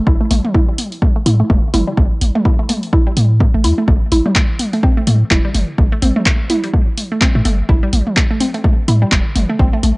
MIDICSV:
0, 0, Header, 1, 4, 480
1, 0, Start_track
1, 0, Key_signature, 0, "minor"
1, 0, Tempo, 476190
1, 71, Time_signature, 4, 2, 24, 8
1, 10056, End_track
2, 0, Start_track
2, 0, Title_t, "Synth arpeggio sound"
2, 0, Program_c, 0, 84
2, 71, Note_on_c, 0, 64, 81
2, 108, Note_off_c, 0, 64, 0
2, 210, Note_on_c, 0, 57, 77
2, 254, Note_off_c, 0, 57, 0
2, 310, Note_on_c, 0, 57, 78
2, 372, Note_off_c, 0, 57, 0
2, 551, Note_on_c, 0, 64, 85
2, 612, Note_off_c, 0, 64, 0
2, 691, Note_on_c, 0, 55, 72
2, 735, Note_off_c, 0, 55, 0
2, 1170, Note_on_c, 0, 57, 73
2, 1237, Note_off_c, 0, 57, 0
2, 1272, Note_on_c, 0, 64, 70
2, 1308, Note_off_c, 0, 64, 0
2, 1410, Note_on_c, 0, 57, 75
2, 1454, Note_off_c, 0, 57, 0
2, 1510, Note_on_c, 0, 57, 80
2, 1572, Note_off_c, 0, 57, 0
2, 1751, Note_on_c, 0, 64, 75
2, 1812, Note_off_c, 0, 64, 0
2, 1890, Note_on_c, 0, 55, 75
2, 1934, Note_off_c, 0, 55, 0
2, 2370, Note_on_c, 0, 57, 75
2, 2436, Note_off_c, 0, 57, 0
2, 2469, Note_on_c, 0, 64, 80
2, 2507, Note_off_c, 0, 64, 0
2, 2609, Note_on_c, 0, 57, 73
2, 2654, Note_off_c, 0, 57, 0
2, 2710, Note_on_c, 0, 57, 69
2, 2772, Note_off_c, 0, 57, 0
2, 2951, Note_on_c, 0, 64, 84
2, 3012, Note_off_c, 0, 64, 0
2, 3090, Note_on_c, 0, 55, 76
2, 3134, Note_off_c, 0, 55, 0
2, 3571, Note_on_c, 0, 57, 77
2, 3637, Note_off_c, 0, 57, 0
2, 3670, Note_on_c, 0, 64, 74
2, 3707, Note_off_c, 0, 64, 0
2, 3810, Note_on_c, 0, 57, 76
2, 3855, Note_off_c, 0, 57, 0
2, 3912, Note_on_c, 0, 57, 83
2, 3973, Note_off_c, 0, 57, 0
2, 4151, Note_on_c, 0, 64, 76
2, 4212, Note_off_c, 0, 64, 0
2, 4290, Note_on_c, 0, 55, 74
2, 4334, Note_off_c, 0, 55, 0
2, 4771, Note_on_c, 0, 57, 75
2, 4837, Note_off_c, 0, 57, 0
2, 4871, Note_on_c, 0, 60, 84
2, 4908, Note_off_c, 0, 60, 0
2, 5012, Note_on_c, 0, 57, 78
2, 5055, Note_off_c, 0, 57, 0
2, 5111, Note_on_c, 0, 57, 73
2, 5172, Note_off_c, 0, 57, 0
2, 5352, Note_on_c, 0, 64, 83
2, 5413, Note_off_c, 0, 64, 0
2, 5491, Note_on_c, 0, 55, 81
2, 5535, Note_off_c, 0, 55, 0
2, 5971, Note_on_c, 0, 57, 81
2, 6037, Note_off_c, 0, 57, 0
2, 6071, Note_on_c, 0, 60, 74
2, 6108, Note_off_c, 0, 60, 0
2, 6212, Note_on_c, 0, 57, 75
2, 6255, Note_off_c, 0, 57, 0
2, 6312, Note_on_c, 0, 57, 82
2, 6372, Note_off_c, 0, 57, 0
2, 6552, Note_on_c, 0, 64, 72
2, 6613, Note_off_c, 0, 64, 0
2, 6691, Note_on_c, 0, 55, 72
2, 6735, Note_off_c, 0, 55, 0
2, 7172, Note_on_c, 0, 57, 74
2, 7238, Note_off_c, 0, 57, 0
2, 7271, Note_on_c, 0, 60, 80
2, 7308, Note_off_c, 0, 60, 0
2, 7410, Note_on_c, 0, 57, 76
2, 7454, Note_off_c, 0, 57, 0
2, 7512, Note_on_c, 0, 57, 74
2, 7573, Note_off_c, 0, 57, 0
2, 7751, Note_on_c, 0, 64, 81
2, 7812, Note_off_c, 0, 64, 0
2, 7891, Note_on_c, 0, 55, 78
2, 7935, Note_off_c, 0, 55, 0
2, 8371, Note_on_c, 0, 57, 78
2, 8437, Note_off_c, 0, 57, 0
2, 8471, Note_on_c, 0, 60, 71
2, 8508, Note_off_c, 0, 60, 0
2, 8610, Note_on_c, 0, 57, 72
2, 8654, Note_off_c, 0, 57, 0
2, 8712, Note_on_c, 0, 57, 84
2, 8772, Note_off_c, 0, 57, 0
2, 8951, Note_on_c, 0, 64, 73
2, 9012, Note_off_c, 0, 64, 0
2, 9090, Note_on_c, 0, 55, 76
2, 9134, Note_off_c, 0, 55, 0
2, 9570, Note_on_c, 0, 57, 77
2, 9636, Note_off_c, 0, 57, 0
2, 9670, Note_on_c, 0, 60, 85
2, 9707, Note_off_c, 0, 60, 0
2, 9810, Note_on_c, 0, 57, 77
2, 9854, Note_off_c, 0, 57, 0
2, 9910, Note_on_c, 0, 57, 79
2, 9972, Note_off_c, 0, 57, 0
2, 10056, End_track
3, 0, Start_track
3, 0, Title_t, "Sub bass"
3, 0, Program_c, 1, 38
3, 71, Note_on_c, 1, 33, 92
3, 161, Note_off_c, 1, 33, 0
3, 311, Note_on_c, 1, 33, 94
3, 401, Note_off_c, 1, 33, 0
3, 1270, Note_on_c, 1, 45, 81
3, 1439, Note_off_c, 1, 45, 0
3, 1510, Note_on_c, 1, 28, 93
3, 1600, Note_off_c, 1, 28, 0
3, 1750, Note_on_c, 1, 31, 94
3, 1841, Note_off_c, 1, 31, 0
3, 1990, Note_on_c, 1, 33, 95
3, 2080, Note_off_c, 1, 33, 0
3, 2230, Note_on_c, 1, 33, 92
3, 2320, Note_off_c, 1, 33, 0
3, 3191, Note_on_c, 1, 45, 98
3, 3491, Note_off_c, 1, 45, 0
3, 3569, Note_on_c, 1, 33, 88
3, 3670, Note_on_c, 1, 40, 78
3, 3685, Note_off_c, 1, 33, 0
3, 3760, Note_off_c, 1, 40, 0
3, 3910, Note_on_c, 1, 33, 95
3, 4000, Note_off_c, 1, 33, 0
3, 4150, Note_on_c, 1, 33, 91
3, 4240, Note_off_c, 1, 33, 0
3, 5111, Note_on_c, 1, 45, 86
3, 5280, Note_off_c, 1, 45, 0
3, 5350, Note_on_c, 1, 28, 89
3, 5440, Note_off_c, 1, 28, 0
3, 5590, Note_on_c, 1, 31, 88
3, 5681, Note_off_c, 1, 31, 0
3, 5830, Note_on_c, 1, 33, 98
3, 5920, Note_off_c, 1, 33, 0
3, 6071, Note_on_c, 1, 33, 88
3, 6161, Note_off_c, 1, 33, 0
3, 7410, Note_on_c, 1, 45, 94
3, 7475, Note_off_c, 1, 45, 0
3, 7510, Note_on_c, 1, 31, 88
3, 7679, Note_off_c, 1, 31, 0
3, 7751, Note_on_c, 1, 33, 96
3, 7841, Note_off_c, 1, 33, 0
3, 7990, Note_on_c, 1, 33, 91
3, 8081, Note_off_c, 1, 33, 0
3, 8950, Note_on_c, 1, 45, 86
3, 9119, Note_off_c, 1, 45, 0
3, 9190, Note_on_c, 1, 28, 94
3, 9280, Note_off_c, 1, 28, 0
3, 9431, Note_on_c, 1, 31, 86
3, 9521, Note_off_c, 1, 31, 0
3, 9671, Note_on_c, 1, 33, 95
3, 9761, Note_off_c, 1, 33, 0
3, 9910, Note_on_c, 1, 33, 89
3, 10001, Note_off_c, 1, 33, 0
3, 10056, End_track
4, 0, Start_track
4, 0, Title_t, "Drums"
4, 70, Note_on_c, 9, 36, 125
4, 71, Note_on_c, 9, 48, 48
4, 171, Note_off_c, 9, 36, 0
4, 172, Note_off_c, 9, 48, 0
4, 311, Note_on_c, 9, 46, 94
4, 311, Note_on_c, 9, 48, 80
4, 412, Note_off_c, 9, 46, 0
4, 412, Note_off_c, 9, 48, 0
4, 450, Note_on_c, 9, 45, 90
4, 550, Note_on_c, 9, 36, 113
4, 551, Note_off_c, 9, 45, 0
4, 551, Note_on_c, 9, 48, 81
4, 651, Note_off_c, 9, 36, 0
4, 652, Note_off_c, 9, 48, 0
4, 790, Note_on_c, 9, 46, 94
4, 791, Note_on_c, 9, 48, 44
4, 891, Note_off_c, 9, 46, 0
4, 892, Note_off_c, 9, 48, 0
4, 930, Note_on_c, 9, 46, 36
4, 1030, Note_on_c, 9, 36, 110
4, 1031, Note_off_c, 9, 46, 0
4, 1031, Note_on_c, 9, 48, 77
4, 1131, Note_off_c, 9, 36, 0
4, 1132, Note_off_c, 9, 48, 0
4, 1270, Note_on_c, 9, 48, 76
4, 1271, Note_on_c, 9, 46, 92
4, 1371, Note_off_c, 9, 46, 0
4, 1371, Note_off_c, 9, 48, 0
4, 1510, Note_on_c, 9, 36, 102
4, 1510, Note_on_c, 9, 45, 92
4, 1510, Note_on_c, 9, 48, 45
4, 1611, Note_off_c, 9, 36, 0
4, 1611, Note_off_c, 9, 45, 0
4, 1611, Note_off_c, 9, 48, 0
4, 1750, Note_on_c, 9, 45, 81
4, 1750, Note_on_c, 9, 46, 90
4, 1750, Note_on_c, 9, 48, 80
4, 1851, Note_off_c, 9, 45, 0
4, 1851, Note_off_c, 9, 46, 0
4, 1851, Note_off_c, 9, 48, 0
4, 1990, Note_on_c, 9, 36, 115
4, 1991, Note_on_c, 9, 48, 81
4, 2090, Note_off_c, 9, 36, 0
4, 2092, Note_off_c, 9, 48, 0
4, 2230, Note_on_c, 9, 46, 88
4, 2230, Note_on_c, 9, 48, 46
4, 2331, Note_off_c, 9, 46, 0
4, 2331, Note_off_c, 9, 48, 0
4, 2370, Note_on_c, 9, 45, 86
4, 2470, Note_on_c, 9, 36, 102
4, 2471, Note_off_c, 9, 45, 0
4, 2471, Note_on_c, 9, 48, 79
4, 2570, Note_off_c, 9, 36, 0
4, 2571, Note_off_c, 9, 48, 0
4, 2710, Note_on_c, 9, 46, 93
4, 2711, Note_on_c, 9, 48, 77
4, 2811, Note_off_c, 9, 46, 0
4, 2811, Note_off_c, 9, 48, 0
4, 2850, Note_on_c, 9, 46, 36
4, 2949, Note_on_c, 9, 36, 120
4, 2951, Note_off_c, 9, 46, 0
4, 2951, Note_on_c, 9, 48, 42
4, 3050, Note_off_c, 9, 36, 0
4, 3051, Note_off_c, 9, 48, 0
4, 3190, Note_on_c, 9, 46, 99
4, 3190, Note_on_c, 9, 48, 73
4, 3291, Note_off_c, 9, 46, 0
4, 3291, Note_off_c, 9, 48, 0
4, 3430, Note_on_c, 9, 36, 104
4, 3430, Note_on_c, 9, 48, 76
4, 3530, Note_off_c, 9, 36, 0
4, 3531, Note_off_c, 9, 48, 0
4, 3670, Note_on_c, 9, 46, 86
4, 3670, Note_on_c, 9, 48, 44
4, 3771, Note_off_c, 9, 46, 0
4, 3771, Note_off_c, 9, 48, 0
4, 3909, Note_on_c, 9, 36, 111
4, 3910, Note_on_c, 9, 48, 78
4, 4010, Note_off_c, 9, 36, 0
4, 4011, Note_off_c, 9, 48, 0
4, 4150, Note_on_c, 9, 46, 88
4, 4151, Note_on_c, 9, 48, 42
4, 4251, Note_off_c, 9, 46, 0
4, 4251, Note_off_c, 9, 48, 0
4, 4290, Note_on_c, 9, 45, 80
4, 4389, Note_on_c, 9, 39, 83
4, 4390, Note_on_c, 9, 36, 104
4, 4391, Note_off_c, 9, 45, 0
4, 4391, Note_on_c, 9, 48, 79
4, 4490, Note_off_c, 9, 39, 0
4, 4491, Note_off_c, 9, 36, 0
4, 4492, Note_off_c, 9, 48, 0
4, 4630, Note_on_c, 9, 46, 91
4, 4631, Note_on_c, 9, 48, 74
4, 4731, Note_off_c, 9, 46, 0
4, 4732, Note_off_c, 9, 48, 0
4, 4770, Note_on_c, 9, 46, 36
4, 4870, Note_on_c, 9, 36, 108
4, 4871, Note_off_c, 9, 46, 0
4, 4871, Note_on_c, 9, 48, 43
4, 4971, Note_off_c, 9, 36, 0
4, 4972, Note_off_c, 9, 48, 0
4, 5111, Note_on_c, 9, 46, 93
4, 5111, Note_on_c, 9, 48, 74
4, 5211, Note_off_c, 9, 46, 0
4, 5212, Note_off_c, 9, 48, 0
4, 5350, Note_on_c, 9, 36, 101
4, 5351, Note_on_c, 9, 39, 82
4, 5351, Note_on_c, 9, 45, 89
4, 5351, Note_on_c, 9, 48, 77
4, 5451, Note_off_c, 9, 36, 0
4, 5452, Note_off_c, 9, 39, 0
4, 5452, Note_off_c, 9, 45, 0
4, 5452, Note_off_c, 9, 48, 0
4, 5591, Note_on_c, 9, 45, 72
4, 5591, Note_on_c, 9, 46, 83
4, 5591, Note_on_c, 9, 48, 44
4, 5692, Note_off_c, 9, 45, 0
4, 5692, Note_off_c, 9, 46, 0
4, 5692, Note_off_c, 9, 48, 0
4, 5830, Note_on_c, 9, 36, 113
4, 5831, Note_on_c, 9, 48, 71
4, 5931, Note_off_c, 9, 36, 0
4, 5932, Note_off_c, 9, 48, 0
4, 6071, Note_on_c, 9, 46, 83
4, 6071, Note_on_c, 9, 48, 74
4, 6172, Note_off_c, 9, 46, 0
4, 6172, Note_off_c, 9, 48, 0
4, 6210, Note_on_c, 9, 45, 82
4, 6310, Note_on_c, 9, 36, 98
4, 6311, Note_off_c, 9, 45, 0
4, 6311, Note_on_c, 9, 39, 83
4, 6311, Note_on_c, 9, 48, 43
4, 6411, Note_off_c, 9, 36, 0
4, 6412, Note_off_c, 9, 39, 0
4, 6412, Note_off_c, 9, 48, 0
4, 6551, Note_on_c, 9, 46, 87
4, 6551, Note_on_c, 9, 48, 69
4, 6651, Note_off_c, 9, 46, 0
4, 6651, Note_off_c, 9, 48, 0
4, 6691, Note_on_c, 9, 46, 35
4, 6790, Note_on_c, 9, 36, 106
4, 6790, Note_on_c, 9, 48, 72
4, 6792, Note_off_c, 9, 46, 0
4, 6891, Note_off_c, 9, 36, 0
4, 6891, Note_off_c, 9, 48, 0
4, 7031, Note_on_c, 9, 46, 85
4, 7031, Note_on_c, 9, 48, 39
4, 7132, Note_off_c, 9, 46, 0
4, 7132, Note_off_c, 9, 48, 0
4, 7270, Note_on_c, 9, 36, 97
4, 7271, Note_on_c, 9, 39, 84
4, 7271, Note_on_c, 9, 48, 77
4, 7371, Note_off_c, 9, 36, 0
4, 7372, Note_off_c, 9, 39, 0
4, 7372, Note_off_c, 9, 48, 0
4, 7511, Note_on_c, 9, 46, 83
4, 7511, Note_on_c, 9, 48, 75
4, 7612, Note_off_c, 9, 46, 0
4, 7612, Note_off_c, 9, 48, 0
4, 7750, Note_on_c, 9, 36, 110
4, 7751, Note_on_c, 9, 48, 42
4, 7851, Note_off_c, 9, 36, 0
4, 7851, Note_off_c, 9, 48, 0
4, 7990, Note_on_c, 9, 48, 75
4, 7991, Note_on_c, 9, 46, 90
4, 8091, Note_off_c, 9, 46, 0
4, 8091, Note_off_c, 9, 48, 0
4, 8130, Note_on_c, 9, 45, 83
4, 8230, Note_on_c, 9, 36, 95
4, 8230, Note_on_c, 9, 48, 74
4, 8231, Note_off_c, 9, 45, 0
4, 8231, Note_on_c, 9, 39, 86
4, 8331, Note_off_c, 9, 36, 0
4, 8331, Note_off_c, 9, 39, 0
4, 8331, Note_off_c, 9, 48, 0
4, 8471, Note_on_c, 9, 46, 86
4, 8471, Note_on_c, 9, 48, 40
4, 8571, Note_off_c, 9, 46, 0
4, 8571, Note_off_c, 9, 48, 0
4, 8610, Note_on_c, 9, 46, 35
4, 8710, Note_off_c, 9, 46, 0
4, 8710, Note_on_c, 9, 36, 105
4, 8710, Note_on_c, 9, 48, 67
4, 8811, Note_off_c, 9, 36, 0
4, 8811, Note_off_c, 9, 48, 0
4, 8950, Note_on_c, 9, 48, 71
4, 8951, Note_on_c, 9, 46, 86
4, 9051, Note_off_c, 9, 48, 0
4, 9052, Note_off_c, 9, 46, 0
4, 9190, Note_on_c, 9, 36, 92
4, 9190, Note_on_c, 9, 39, 85
4, 9190, Note_on_c, 9, 45, 86
4, 9190, Note_on_c, 9, 48, 43
4, 9291, Note_off_c, 9, 36, 0
4, 9291, Note_off_c, 9, 39, 0
4, 9291, Note_off_c, 9, 45, 0
4, 9291, Note_off_c, 9, 48, 0
4, 9430, Note_on_c, 9, 45, 73
4, 9430, Note_on_c, 9, 46, 84
4, 9430, Note_on_c, 9, 48, 75
4, 9531, Note_off_c, 9, 45, 0
4, 9531, Note_off_c, 9, 46, 0
4, 9531, Note_off_c, 9, 48, 0
4, 9670, Note_on_c, 9, 36, 109
4, 9670, Note_on_c, 9, 48, 75
4, 9771, Note_off_c, 9, 36, 0
4, 9771, Note_off_c, 9, 48, 0
4, 9911, Note_on_c, 9, 46, 88
4, 9911, Note_on_c, 9, 48, 43
4, 10012, Note_off_c, 9, 46, 0
4, 10012, Note_off_c, 9, 48, 0
4, 10056, End_track
0, 0, End_of_file